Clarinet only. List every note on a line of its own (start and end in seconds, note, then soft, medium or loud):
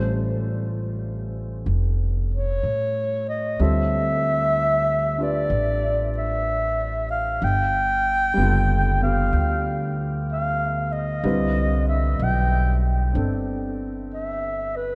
0.00 0.16 C5 medium
2.34 3.24 C#5 loud
3.29 3.63 D#5 medium
3.62 5.19 E5 loud
5.22 6.12 D5 medium
6.18 7.07 E5 medium
7.11 7.46 F5 medium
7.44 9.01 G5 loud
9.03 9.93 F5 medium
10.33 10.94 F5 medium
10.92 11.87 D#5 medium
11.89 12.25 E5 medium
12.23 12.84 G5 medium
14.14 14.78 E5 medium
14.77 14.95 B4 medium